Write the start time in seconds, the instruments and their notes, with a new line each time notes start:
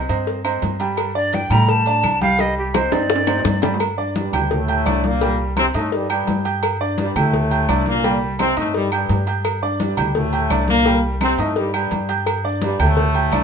0.09 upright bass G2, grand piano C4 C5 D#5, cowbell, low agogo
0.27 cowbell, high conga
0.45 grand piano C4 C5 D#5, high conga, low agogo, claves
0.62 upright bass G2, cowbell, high conga, low timbale, low agogo
0.80 grand piano G3 G4 G5, cowbell, low agogo
0.97 cowbell, high conga, low agogo, claves
1.15 grand piano D4 D5, flute D5, high conga
1.33 flute G5, cowbell, high conga, low agogo
1.50 upright bass A2, grand piano G3 G4 G5, flute A#5, high conga, low conga, low agogo, claves
1.69 flute A5, cowbell, high conga
1.86 grand piano D4 D5, high conga, low agogo
2.03 upright bass C2, cowbell, high conga, low agogo, claves
2.21 grand piano G3 G4 G5, flute F5, cowbell, high conga
2.39 grand piano G3 G4 G5, flute D#5, cowbell, low agogo
2.57 flute G4, high conga
2.74 grand piano C4 C5 D#5, flute C5, cowbell, high bongo, high conga, low agogo, claves
2.92 upright bass G2, grand piano C4 D#4 C5, flute D5, cowbell, high bongo, high timbale, low agogo
3.10 cowbell, high bongo, high conga
3.16 high timbale
3.27 grand piano C4 D#4 C5, low bongo, high conga, low timbale, low agogo, claves
3.39 low timbale
3.45 upright bass G2, cowbell, low bongo, high conga, low agogo
3.50 low timbale
3.62 grand piano G3 G4 G5, cowbell, low bongo, high conga, low timbale, low agogo
3.74 low timbale
3.80 cowbell, high conga, low agogo, claves
3.97 grand piano D4 D5 D6, high conga
4.15 trombone section G2 G3, cowbell, high conga, low agogo
4.33 upright bass D2, grand piano G4 G5 G6, high conga, low conga, low agogo, claves
4.51 trombone section A2 A3, cowbell, high conga, low conga
4.68 grand piano G4 G5 G6, high conga, low agogo
4.86 upright bass C2, grand piano D4 D5 D6, cowbell, high conga, low agogo, claves
5.04 trombone section A#2 A#3, cowbell, high conga
5.21 grand piano G3 G4 G5, cowbell, low agogo
5.39 high conga
5.57 trombone section C3 C4, grand piano C4 C5 C6, cowbell, high conga, low agogo, claves
5.74 upright bass G2, trombone section A2 A3, grand piano D#4 D#5 D#6, cowbell, low agogo
5.92 trombone section G2 G3, cowbell, high conga
6.09 trombone section G2 G3, grand piano G4 G5 G6, high conga, low agogo, claves
6.27 upright bass G2, cowbell, high conga, low timbale, low agogo
6.45 grand piano G4 G5 G6, cowbell, low agogo
6.63 cowbell, high conga, low agogo, claves
6.81 grand piano D4 D5 D6, high conga
6.98 trombone section G2 G3, cowbell, high conga, low agogo
7.16 upright bass D2, trombone section A2 A3, grand piano G4 G5 G6, high conga, low conga, low agogo, claves
7.33 cowbell, high conga, low conga
7.51 grand piano G4 G5 G6, high conga, low agogo
7.69 upright bass C2, grand piano D4 D5 D6, cowbell, high conga, low agogo, claves
7.86 trombone section A#2 A#3, cowbell, high conga
8.04 grand piano G3 G4 G5, cowbell, high conga, low agogo
8.22 high conga
8.39 trombone section C3 C4, grand piano C4 C5 C6, cowbell, high conga, low agogo, claves
8.57 upright bass G2, trombone section A2 A3, grand piano D#4 D#5 D#6, cowbell, low agogo
8.74 trombone section G2 G3, cowbell, high conga
8.92 trombone section G2 G3, grand piano G4 G5 G6, high conga, low agogo, claves
9.09 upright bass G2, cowbell, high conga, low timbale, low agogo
9.27 grand piano G4 G5 G6, cowbell, low agogo
9.45 cowbell, high conga, low agogo, claves
9.62 grand piano D4 D5 D6, high conga
9.80 trombone section G2 G3, cowbell, high conga, low agogo
9.97 upright bass D2, grand piano G4 G5 G6, high conga, low conga, low agogo, claves
10.15 trombone section A2 A3, cowbell, high conga, low conga
10.33 grand piano G4 G5 G6, high conga, low agogo
10.50 upright bass C2, grand piano D4 D5 D6, cowbell, high conga, low agogo, claves
10.68 trombone section A#2 A#3, cowbell, high conga
10.86 grand piano G3 G4 G5, cowbell, low agogo
11.03 high conga
11.21 trombone section C3 C4, grand piano C4 C5 C6, cowbell, high conga, low agogo, claves
11.38 upright bass G2, trombone section A2 A3, grand piano D#4 D#5 D#6, cowbell, low agogo
11.56 trombone section G2 G3, cowbell, high conga
11.74 trombone section G2 G3, grand piano G4 G5 G6, high conga, low agogo, claves
11.91 upright bass G2, cowbell, high conga, low agogo
12.09 grand piano G4 G5 G6, cowbell, low agogo
12.26 cowbell, high conga, low agogo, claves
12.44 grand piano D4 D5 D6, high conga
12.61 trombone section G2 G3, cowbell, high conga, low agogo
12.79 upright bass D2, trombone section A2 A3, grand piano G4 G5 G6, high conga, low conga, low agogo, claves
12.97 cowbell, high conga, low conga
13.15 grand piano G4 G5 G6, high conga, low agogo
13.32 upright bass C2, grand piano D4 D5 D6, cowbell, high conga, low agogo, claves